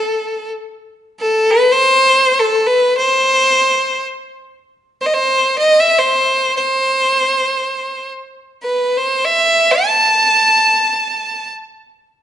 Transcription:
Already playing: A4
1.20 A4
1.50 B4
1.72 C5
2.39 A4
2.67 B4
2.97 C5
5.01 C5
5.06 D#5
5.14 C5
5.58 D#5
5.80 E5
5.99 C5
6.57 C5
8.63 B4
8.97 C5
9.25 E5
9.71 A5

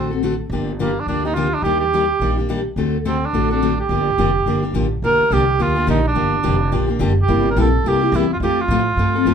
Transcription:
Already playing: A1 C4 F#4
0.11 C4 F#4 A4
0.23 D3 A3 C4 F#4 A4
0.49 G1 D3 F3 A#3 D4 G4
0.79 D3 F3 A#3 D4 G4
1.00 D4
1.06 D2 D3 F3 A#3 D4 G4
1.25 A#3 D4 D#4 G4
1.34 D3 F3 A#3 D4 F4 G4
1.54 D4
1.62 D#2 D#3 G3 A#3 D4 G4
1.80 G4
1.93 D#3 G3 A#3 D4 G4
2.19 A#1 D#3 G3 A#3 D4 G4
2.38 A#3 D4 G4
2.49 D#3 G3 A#3 D4 G4
2.76 D2 D3 A3 C4 F#4 A4
3.05 D3 A3 C4 F#4 A4
3.26 D4
3.33 A1 D3 A3 C4 F#4 A4
3.50 C4 D4 F#4 A4
3.62 D3 A3 C4 F#4 A4
3.80 G4
3.89 G1 D3 F3 A#3 D4 G4
4.18 F1 D3 F3 A#3 D4 G4
4.46 G1 D3 F3 A#3 D4 G4
4.63 A#3 D4 G4
4.74 A1 D3 F3 A#3 D4 G4
5.02 A#1 D3 F3 A#3 D4 G4 A#4
5.19 muted upright bass stroke
5.30 C2 D3 F3 A#3 D4 G4
5.59 D2 D3 F3 A#3 D4 F4 G4
5.75 A#3 D4 G4
5.87 A#1 D3 F3 A#3 D4 D#4 G4
6.07 D4
6.15 G1 D3 F3 A#3 D4 G4
6.43 F1 D3 F3 A#3 D4 G4
6.72 A#1 D3 F3 A#3 D4 G4
6.88 A#3 D4 G4
6.99 F#1 D3 F3 A#3 D4 G4
7.22 G4
7.28 G1 C3 G3 A#3 E4 G4
7.50 A#4
7.56 A#1 C3 G3 A#3 E4 G4 A4
7.84 C2 C3 G3 A#3 E4 G4
8.01 A#3 E4 G4
8.12 E2 C3 G3 A#3 E4 G4
8.33 F4
8.40 F2 F3 A3 C4 F4 G4 A4
8.61 F4
8.68 A2 F3 A3 C4 F4 A4
8.97 G2 F3 A3 C4 F4 A4
9.15 C4 F4 A4
9.25 F2 F3 A3 C4 F4 A4

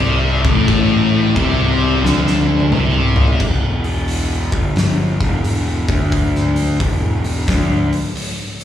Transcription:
Already playing: C2 C3
0.00 crash
0.44 A1 A2, kick
0.68 kick, crash
1.36 C2 C3, kick, crash
2.04 D2 D3, snare
2.27 snare
2.60 high tom
2.72 C2 C3, mid tom
3.16 floor tom
3.28 floor tom
3.40 E1, kick, crash
3.84 open hi-hat
4.08 open hi-hat
4.52 G1, kick, open hi-hat
4.76 snare, open hi-hat
5.21 E1, kick, open hi-hat
5.44 open hi-hat
5.89 D2, kick, open hi-hat
6.12 kick, open hi-hat
6.35 snare
6.56 open hi-hat
6.80 E1, kick, open hi-hat
7.24 open hi-hat
7.48 D2, kick, snare, open hi-hat
7.93 open hi-hat
8.16 open hi-hat
8.60 open hi-hat

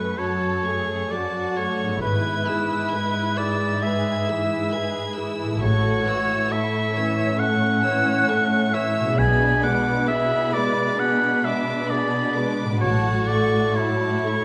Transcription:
Already playing: F#2 A3 C#4 F#4 A4 B4 C#6
0.17 F#3 F#4 A4 C#5 A5
0.63 A3 G#4 A4 C#6
1.10 F#3 F#4 D5 A5
1.56 A3 A4 C#5 C#6
1.83 G#2
1.88 B3 E4
1.96 B4
2.01 G#1 G#2 G#3 E4 B4 G#6
2.46 E3 G#4 E6
2.91 G#3 B4 G#6
3.36 E3 G#4 D5 E6
3.82 G#3 G#4 B4 E5 G#6
4.26 E3 E4 G#4 E6
4.71 G#3 G#4 B4 G#6
5.15 E3 E4 G#4 E6
5.44 A2
5.48 A3
5.53 E4
5.57 E5
5.62 A1 A2 A3 F#4 A4 C#5 C#6
6.05 E3 C#5 E6
6.50 A3 E4 A4 E5 C#6
6.95 E3 C#4 C#5 E6
7.39 A3 A4 F#5 C#6
7.85 E3 C#5 E6
8.28 A3 A4 C#6
8.73 E3 C#5 E5 E6
9.00 B2
9.05 G#3
9.09 G#4
9.13 D5
9.18 B1 B2 B3 D4 G#4 G#5 B5
9.63 G#3 B4 F#5 D6
10.07 B3 E4 G#4 E5 B5
10.53 G#3 B4 D5 D6
10.99 B3 D4 G#4 F#5 B5
11.44 G#3 B4 E5 D6
11.90 B3 G#4 D5 B5
12.35 G#3 B4 D6
12.63 A2 A3
12.72 F#4
12.76 C#5
12.81 A1 A2 F#3 F#4 C#5 A5
13.28 A3 A4 D5 C#6
13.75 F#3 E4 F#4 C#5 A5
14.23 A3 A4 C#6

